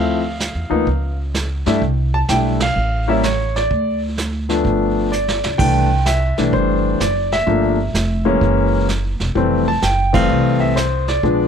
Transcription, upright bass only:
Already playing: D2
0.55 E2
0.71 D2
0.87 C#2
1.67 G2
1.82 C2
2.29 B1
2.76 A1
3.70 D2
4.65 G1
5.44 C#2
5.59 C2
6.38 B1
6.53 G1
7.00 F#1
7.47 G1
7.94 F1
8.41 F#1
9.20 E1
9.35 F1
9.83 F#1
10.29 C2
11.23 A#1

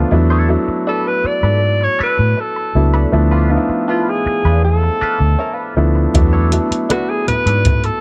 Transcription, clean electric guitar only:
0.11 muted clean electric guitar stroke
0.30 D4 A4 C#5
0.49 muted clean electric guitar stroke
0.68 muted clean electric guitar stroke
0.87 D4 A4 B4
1.25 muted clean electric guitar stroke
1.43 D4 A4 B4
1.81 muted clean electric guitar stroke
1.99 D4 A4 B4
2.19 muted clean electric guitar stroke
2.37 muted clean electric guitar stroke
2.56 muted clean electric guitar stroke
2.94 D4 A4 B4
3.13 muted clean electric guitar stroke
3.31 D4 F4 B4
3.51 muted clean electric guitar stroke
3.70 muted clean electric guitar stroke
3.88 D4 F4 B4
4.26 muted clean electric guitar stroke
4.45 D4 F4 B4
4.83 muted clean electric guitar stroke
5.01 D4 F4 B4
5.20 muted clean electric guitar stroke
5.39 C#4 E4 A#4
5.53 D4 F4 B4
5.76 muted clean electric guitar stroke
5.95 muted clean electric guitar stroke
6.14 muted clean electric guitar stroke
6.33 D4 A4 C#5
6.52 muted clean electric guitar stroke
6.71 muted clean electric guitar stroke
6.89 D4 A4 B4
7.27 muted clean electric guitar stroke
7.46 D4 A4 B4
7.84 muted clean electric guitar stroke

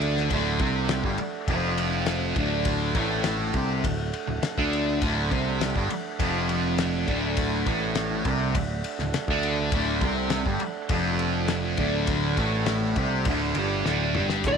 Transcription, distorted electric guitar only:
Already playing: D3 D4
0.31 D2 D3
0.61 C3 C4
1.05 G2 G3
1.19 muted distorted electric guitar stroke
1.49 F2 F3
2.37 D2 D3
2.95 A2 A3
3.56 C3 C4
3.85 D2
4.27 D2
4.43 muted distorted electric guitar stroke
4.58 D3 D4
5.03 D2 D3
5.31 C3 C4
5.77 G2 G3
5.91 muted distorted electric guitar stroke
6.20 F2 F3
7.08 D2 D3
7.67 A2 A3
8.27 C3 C4
8.56 D2
9.01 D2
9.16 muted distorted electric guitar stroke
9.30 D3 D4
9.74 D2 D3
10.04 C3 C4
10.48 G2 G3
10.62 muted distorted electric guitar stroke
10.90 F2 F3
11.78 D2 D3
12.38 A2 A3
12.97 C3 C4
13.28 D2 D3
13.57 G2 G3
13.86 D2 D3
14.16 G2 G3
14.45 D2 A2 D3

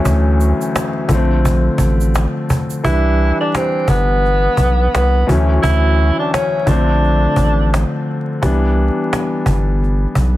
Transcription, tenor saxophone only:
2.84 E4
3.40 D4
3.56 C4
3.89 B3
4.95 B3
5.63 E4
6.19 D4
6.33 C#4
6.68 D4

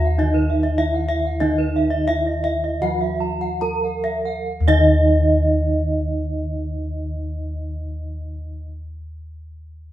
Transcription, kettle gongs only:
Already playing: D#2 D#4
0.78 E4
1.41 D#4
2.08 E4
2.81 D#3
3.61 E4
4.61 D#2

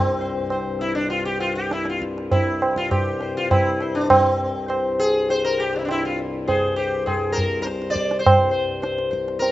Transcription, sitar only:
Already playing: C4
0.21 C5
0.52 C5
0.81 E4
0.95 D4
1.10 F4
1.25 G4
1.40 F4
1.55 G4
1.72 E4
1.89 F4
2.31 E4
2.77 F4
2.91 G4
3.22 C5
3.37 F4
3.51 E4
3.82 C5
3.95 D4
4.10 C4
4.68 C5
5.00 G#4
5.30 C5
5.45 A#4
5.60 G4
5.76 D4 E4
5.85 D4
5.91 E4
6.05 F4
6.48 G#4 C5
6.76 G4 C5
7.06 G#4
7.32 A#4 C5
7.62 C5
7.90 C5 D5
8.19 C5
8.51 C5
8.82 C5
9.11 C5
9.39 A#4

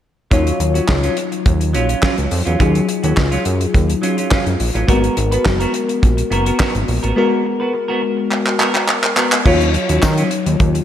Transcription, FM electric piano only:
0.31 F#3 D#4 F4 C#5
2.59 F#3 D#4 F4 G#4
4.88 G#3 A#3 F#4 A#4
4.95 B3
7.16 G#3 B3 F#4 A#4
9.45 F3 D#4 F4 C#5
9.51 F#3

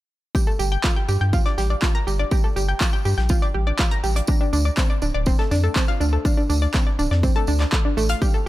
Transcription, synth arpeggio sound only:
0.35 G4
0.47 A4
0.59 G4
0.72 G5
0.84 F4
0.96 G5
1.09 G4
1.21 G5
1.33 F4
1.46 D5
1.58 G4
1.70 D5
1.82 F4
1.95 A#5
2.07 G4
2.19 D5
2.32 G4
2.44 A4
2.56 G4
2.69 G5
2.81 F4
2.93 G5
3.05 G4
3.18 G5
3.30 F4
3.42 D5
3.54 G4
3.67 D5
3.79 F4
3.91 A#5
4.04 G4
4.16 D5
4.28 D4
4.41 D4
4.53 D4
4.65 D5
4.77 C4
4.90 D5
5.02 D4
5.14 D5
5.27 C4
5.39 A4
5.51 D4
5.64 A4
5.76 C4
5.88 F5
6.00 D4
6.13 A4
6.25 D4
6.37 D4
6.50 D4
6.62 D5
6.74 C4
6.87 D5
6.99 D4
7.11 D5
7.23 C4
7.36 A4
7.48 D4
7.60 D5
7.72 A4
7.85 D4
7.97 A3
8.10 F5
8.22 G4
8.34 A4

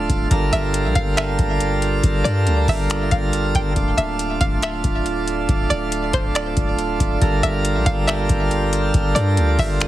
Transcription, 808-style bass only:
0.10 D1
0.31 G1
0.53 G1
0.85 A#1
0.95 G1
1.39 G1
2.04 G1
2.25 G2
2.47 D2
2.68 G1
3.12 G1
3.55 G1
3.76 D1
3.98 D1
4.41 D1
4.84 D1
5.49 D1
5.71 D1
6.13 D1
6.57 D1
7.00 D1
7.22 G1
7.43 G1
7.76 A#1
7.86 G1
8.30 G1
8.94 G1
9.16 G2
9.37 D2
9.59 G1

